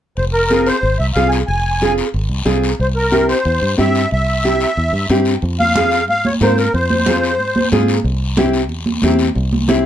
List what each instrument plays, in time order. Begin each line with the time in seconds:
0.17 fingered electric bass F1, accordion C5, long guiro
0.33 accordion A#4
0.50 nylon-string guitar C4 F4 G#4, short guiro
0.67 accordion C5, short guiro
0.83 fingered electric bass G#1, long guiro
0.99 fingered electric bass C2, accordion E5
1.14 fingered electric bass C2, nylon-string guitar C4 F4 G#4, accordion F5, short guiro
1.29 accordion G#5, short guiro
1.47 fingered electric bass F1, accordion G#5, long guiro
1.81 nylon-string guitar C4 F4 G#4, short guiro
1.98 short guiro
2.14 fingered electric bass G#1, long guiro
2.29 fingered electric bass C2
2.45 fingered electric bass C2, nylon-string guitar C4 F4 G#4, short guiro
2.64 short guiro
2.79 fingered electric bass C2, accordion C5, long guiro
2.96 accordion A#4
3.11 nylon-string guitar C4 E4 G4, short guiro
3.28 accordion C5, short guiro
3.45 fingered electric bass E2, long guiro
3.62 fingered electric bass G2
3.77 fingered electric bass G2, nylon-string guitar C4 E4 G4, accordion E5, short guiro
3.95 short guiro
4.11 fingered electric bass C2, accordion E5, long guiro
4.44 nylon-string guitar C4 E4 G4, short guiro
4.60 short guiro
4.77 fingered electric bass E2, long guiro
4.93 fingered electric bass G2
5.09 fingered electric bass G2, nylon-string guitar C4 E4 G4, short guiro
5.25 short guiro
5.42 fingered electric bass F2, high conga, long guiro
5.60 accordion F5, high conga
5.75 nylon-string guitar C4 F4 G#4, high conga, short guiro
5.92 short guiro
6.08 fingered electric bass G#2, accordion F5, high conga, long guiro
6.25 accordion C#5, high conga
6.41 fingered electric bass G#2, nylon-string guitar C4 F4 A#4, accordion C5, high conga, short guiro
6.58 accordion A#4, short guiro
6.74 fingered electric bass F2, accordion C5, high conga, long guiro
6.90 high conga
7.06 nylon-string guitar C4 F4 G#4, high conga, short guiro
7.24 short guiro
7.39 fingered electric bass G#2, high conga, long guiro
7.56 high conga
7.72 fingered electric bass G#2, nylon-string guitar C4 F4 G#4, high conga, short guiro
7.88 short guiro
8.04 fingered electric bass C2, high conga, long guiro
8.37 nylon-string guitar C4 E4 G4, high conga, short guiro
8.53 short guiro
8.69 fingered electric bass E2, high conga, long guiro
8.86 high conga
9.02 fingered electric bass E2, nylon-string guitar C4 E4 G4, high conga, short guiro
9.19 short guiro
9.35 fingered electric bass C2, high conga, long guiro
9.53 high conga
9.68 nylon-string guitar C4 E4 G4, high conga, short guiro